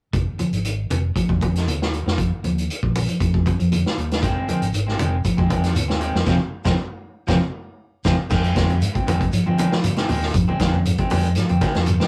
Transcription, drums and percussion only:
0.13 kick medium
0.13 closed hi-hat medium
0.39 closed hi-hat soft
0.39 high conga medium
0.53 closed hi-hat soft
0.65 closed hi-hat medium
0.90 closed hi-hat soft
0.90 high conga medium
1.16 kick medium
1.16 closed hi-hat medium
1.29 kick medium
1.29 high conga medium
1.41 kick medium
1.41 closed hi-hat soft
1.41 high conga medium
1.56 snare soft
1.56 closed hi-hat soft
1.68 closed hi-hat medium
1.68 high conga medium
1.82 snare medium
1.94 closed hi-hat soft
2.08 snare medium
2.18 kick medium
2.18 closed hi-hat medium
2.44 closed hi-hat soft
2.44 high conga medium
2.58 closed hi-hat soft
2.70 closed hi-hat medium
2.83 kick medium
2.95 open hi-hat medium
2.95 high conga medium
3.09 closed hi-hat soft
3.20 kick medium
3.20 closed hi-hat medium
3.34 kick medium
3.46 kick medium
3.46 closed hi-hat soft
3.46 high conga medium
3.60 closed hi-hat soft
3.72 closed hi-hat medium
3.72 high conga medium
3.86 snare medium
3.98 closed hi-hat soft
4.11 snare medium
4.11 closed hi-hat soft
4.23 kick medium
4.23 snare soft
4.23 closed hi-hat medium
4.23 shekere medium
4.48 closed hi-hat soft
4.48 high conga medium
4.48 shekere soft
4.62 closed hi-hat soft
4.73 closed hi-hat medium
4.73 shekere medium
4.88 snare soft
4.99 closed hi-hat soft
4.99 high conga medium
4.99 shekere soft
5.25 kick medium
5.25 closed hi-hat medium
5.25 shekere medium
5.38 kick medium
5.38 high conga medium
5.50 kick medium
5.50 closed hi-hat soft
5.50 high conga medium
5.50 shekere soft
5.64 snare soft
5.64 closed hi-hat soft
5.75 closed hi-hat medium
5.75 high conga medium
5.75 shekere medium
5.90 snare medium
6.01 closed hi-hat soft
6.01 shekere soft
6.15 snare medium
6.26 kick medium
6.26 snare medium
6.26 high conga medium
6.26 shekere medium
6.65 kick medium
6.65 snare medium
6.65 high conga medium
6.65 shekere medium
7.28 kick medium
7.28 snare medium
7.28 high conga medium
7.28 shekere medium
8.05 kick medium
8.05 snare medium
8.05 high conga medium
8.05 shekere medium
8.30 kick medium
8.30 snare soft
8.30 crash medium
8.30 shekere medium
8.44 closed hi-hat soft
8.56 kick medium
8.56 snare medium
8.56 closed hi-hat medium
8.56 high conga medium
8.56 shekere soft
8.69 closed hi-hat soft
8.69 high conga medium
8.81 closed hi-hat medium
8.81 shekere medium
8.95 kick medium
8.95 closed hi-hat soft
9.07 closed hi-hat medium
9.07 high conga medium
9.07 low conga medium
9.07 shekere soft
9.21 kick medium
9.21 closed hi-hat soft
9.33 closed hi-hat medium
9.33 shekere medium
9.47 high conga medium
9.58 closed hi-hat medium
9.58 high conga medium
9.58 shekere soft
9.72 snare medium
9.84 closed hi-hat medium
9.84 high conga medium
9.84 shekere medium
9.96 snare medium
9.96 closed hi-hat soft
10.09 open hi-hat medium
10.09 low conga medium
10.09 shekere soft
10.23 snare soft
10.34 kick medium
10.34 closed hi-hat medium
10.34 shekere medium
10.49 high conga medium
10.49 low conga medium
10.60 kick medium
10.60 snare medium
10.60 closed hi-hat medium
10.60 high conga medium
10.60 shekere soft
10.74 high conga medium
10.85 closed hi-hat medium
10.85 shekere medium
10.98 kick medium
10.98 closed hi-hat soft
11.10 open hi-hat medium
11.10 high conga medium
11.10 low conga medium
11.10 shekere soft
11.23 closed hi-hat soft
11.35 snare soft
11.35 closed hi-hat medium
11.35 shekere medium
11.49 closed hi-hat soft
11.49 high conga medium
11.61 kick medium
11.61 snare soft
11.61 closed hi-hat soft
11.61 high conga medium
11.61 shekere soft
11.74 snare medium
11.74 closed hi-hat soft
11.86 closed hi-hat medium
11.86 high conga medium
11.86 shekere medium
12.00 snare medium

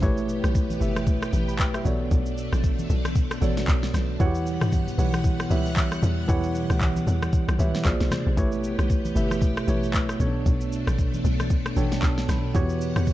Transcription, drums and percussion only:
0.03 kick loud
0.03 low conga medium
0.03 shaker medium
0.17 shaker medium
0.29 shaker medium
0.44 cross-stick medium
0.44 high conga medium
0.44 shaker medium
0.55 kick loud
0.55 shaker medium
0.70 high conga medium
0.70 shaker medium
0.81 low conga medium
0.81 shaker medium
0.96 cross-stick loud
0.96 high conga medium
0.96 shaker medium
1.06 kick loud
1.06 low conga medium
1.06 shaker medium
1.22 cross-stick loud
1.22 shaker medium
1.33 high conga medium
1.33 shaker medium
1.49 shaker medium
1.59 kick loud
1.59 clap loud
1.59 shaker medium
1.74 cross-stick medium
1.74 shaker medium
1.85 high conga medium
1.85 low conga medium
1.85 shaker loud
2.11 kick loud
2.11 low conga medium
2.11 shaker medium
2.26 shaker medium
2.38 shaker medium
2.52 cross-stick medium
2.52 high conga medium
2.52 shaker medium
2.64 kick loud
2.64 shaker medium
2.79 high conga medium
2.79 shaker medium
2.90 low conga medium
2.90 shaker medium
3.05 cross-stick loud
3.05 high conga medium
3.05 shaker medium
3.15 kick loud
3.15 low conga medium
3.15 shaker medium
3.31 cross-stick loud
3.31 shaker medium
3.42 high conga medium
3.42 shaker medium
3.57 snare medium
3.57 shaker medium
3.68 kick loud
3.68 clap loud
3.68 shaker medium
3.83 snare medium
3.83 shaker medium
3.94 cross-stick medium
3.94 snare medium
3.94 high conga medium
3.94 low conga medium
3.94 shaker loud
4.20 kick loud
4.20 low conga medium
4.20 shaker medium
4.35 shaker medium
4.46 shaker medium
4.61 cross-stick loud
4.61 high conga medium
4.61 shaker medium
4.72 kick loud
4.72 shaker medium
4.88 high conga medium
4.88 shaker medium
4.98 low conga medium
4.98 shaker medium
5.13 cross-stick loud
5.13 high conga medium
5.13 shaker medium
5.24 kick loud
5.24 low conga medium
5.24 shaker medium
5.40 cross-stick loud
5.40 shaker medium
5.51 high conga medium
5.51 shaker medium
5.66 shaker medium
5.76 kick loud
5.76 clap loud
5.76 shaker medium
5.92 cross-stick medium
5.92 shaker medium
6.03 high conga medium
6.03 low conga medium
6.03 shaker loud
6.29 kick loud
6.29 low conga medium
6.29 shaker medium
6.43 shaker medium
6.55 shaker medium
6.70 cross-stick medium
6.70 high conga soft
6.70 shaker medium
6.81 kick loud
6.81 clap medium
6.81 shaker medium
6.96 high conga medium
6.96 shaker medium
7.07 low conga medium
7.07 shaker medium
7.22 cross-stick loud
7.22 high conga medium
7.22 shaker medium
7.33 kick loud
7.33 low conga medium
7.33 shaker medium
7.49 cross-stick loud
7.49 shaker soft
7.59 high conga medium
7.59 shaker medium
7.75 snare medium
7.75 shaker medium
7.85 kick loud
7.85 clap loud
7.85 shaker medium
8.00 snare medium
8.00 shaker medium
8.11 cross-stick loud
8.11 snare medium
8.11 high conga medium
8.11 low conga medium
8.11 shaker loud
8.37 kick loud
8.37 low conga medium
8.37 shaker medium
8.52 shaker medium
8.64 shaker medium
8.78 cross-stick medium
8.78 high conga medium
8.78 shaker medium
8.90 kick loud
8.90 shaker medium
9.05 high conga medium
9.05 shaker medium
9.16 low conga medium
9.16 shaker medium
9.31 cross-stick medium
9.31 high conga medium
9.31 shaker medium
9.41 kick loud
9.41 low conga medium
9.41 shaker medium
9.57 cross-stick loud
9.57 shaker soft
9.68 high conga medium
9.68 shaker medium
9.83 shaker medium
9.94 kick loud
9.94 clap loud
9.94 shaker medium
10.09 cross-stick medium
10.09 shaker medium
10.20 high conga medium
10.20 low conga medium
10.20 shaker loud
10.46 kick loud
10.46 low conga medium
10.46 shaker medium
10.61 shaker medium
10.72 shaker medium
10.87 cross-stick loud
10.87 high conga soft
10.87 shaker medium
10.98 kick loud
10.98 shaker medium
11.14 high conga medium
11.14 shaker medium
11.24 low conga medium
11.24 shaker medium
11.40 cross-stick medium
11.40 high conga medium
11.40 shaker medium
11.50 kick loud
11.50 low conga medium
11.50 shaker medium
11.66 cross-stick loud
11.66 shaker soft
11.77 high conga medium
11.77 shaker medium
11.92 snare medium
11.92 shaker medium
12.02 kick loud
12.02 clap loud
12.02 shaker medium
12.18 snare medium
12.18 shaker medium
12.29 cross-stick medium
12.29 snare medium
12.29 high conga medium
12.29 low conga medium
12.29 shaker loud
12.55 kick loud
12.55 low conga medium
12.55 shaker medium
12.69 shaker medium
12.81 shaker medium
12.96 cross-stick loud
12.96 high conga medium
12.96 shaker medium
13.07 kick medium
13.07 shaker medium

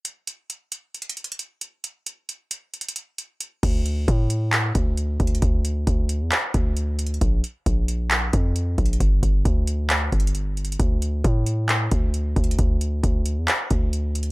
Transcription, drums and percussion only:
0.05 closed hi-hat medium
0.27 closed hi-hat medium
0.50 closed hi-hat medium
0.72 closed hi-hat medium
0.94 closed hi-hat soft
1.02 closed hi-hat medium
1.09 closed hi-hat medium
1.17 closed hi-hat soft
1.24 closed hi-hat medium
1.32 closed hi-hat medium
1.39 closed hi-hat medium
1.61 closed hi-hat medium
1.84 closed hi-hat medium
2.06 closed hi-hat medium
2.29 closed hi-hat medium
2.51 closed hi-hat medium
2.74 closed hi-hat soft
2.81 closed hi-hat medium
2.89 closed hi-hat medium
2.96 closed hi-hat medium
3.18 closed hi-hat medium
3.40 closed hi-hat medium
3.63 kick loud
3.63 closed hi-hat medium
3.63 crash medium
3.86 closed hi-hat medium
4.08 kick medium
4.08 closed hi-hat medium
4.30 closed hi-hat medium
4.53 clap loud
4.53 closed hi-hat medium
4.75 kick loud
4.75 closed hi-hat medium
4.97 closed hi-hat medium
5.20 kick medium
5.20 closed hi-hat soft
5.27 closed hi-hat medium
5.35 closed hi-hat medium
5.42 kick loud
5.42 closed hi-hat medium
5.65 closed hi-hat medium
5.87 kick medium
5.87 closed hi-hat medium
6.09 closed hi-hat medium
6.32 clap loud
6.32 closed hi-hat medium
6.54 kick loud
6.54 closed hi-hat medium
6.77 closed hi-hat medium
6.99 closed hi-hat medium
6.99 open hi-hat medium
7.07 closed hi-hat medium
7.14 closed hi-hat soft
7.21 kick loud
7.21 closed hi-hat medium
7.44 closed hi-hat medium
7.66 kick loud
7.66 closed hi-hat medium
7.88 closed hi-hat medium
8.11 clap loud
8.11 closed hi-hat medium
8.33 kick loud
8.33 closed hi-hat medium
8.56 closed hi-hat medium
8.78 kick loud
8.78 closed hi-hat soft
8.86 closed hi-hat medium
8.93 closed hi-hat medium
9.00 kick loud
9.00 closed hi-hat medium
9.23 kick medium
9.23 closed hi-hat medium
9.45 kick loud
9.45 closed hi-hat medium
9.67 closed hi-hat medium
9.90 clap loud
9.90 closed hi-hat medium
10.12 kick loud
10.12 closed hi-hat soft
10.20 closed hi-hat medium
10.27 closed hi-hat medium
10.35 closed hi-hat medium
10.57 closed hi-hat soft
10.65 closed hi-hat medium
10.72 closed hi-hat medium
10.80 kick loud
10.80 closed hi-hat medium
11.02 closed hi-hat medium
11.24 kick loud
11.24 closed hi-hat medium
11.46 closed hi-hat medium
11.69 clap loud
11.69 closed hi-hat medium
11.91 kick loud
11.91 closed hi-hat medium
12.14 closed hi-hat medium
12.36 kick medium
12.36 closed hi-hat soft
12.44 closed hi-hat medium
12.51 closed hi-hat medium
12.59 kick loud
12.59 closed hi-hat medium
12.81 closed hi-hat medium
13.03 kick loud
13.03 closed hi-hat medium
13.26 closed hi-hat medium
13.48 clap loud
13.48 closed hi-hat medium
13.71 kick loud
13.71 closed hi-hat medium
13.93 closed hi-hat medium
14.15 closed hi-hat medium
14.15 open hi-hat medium
14.23 closed hi-hat medium

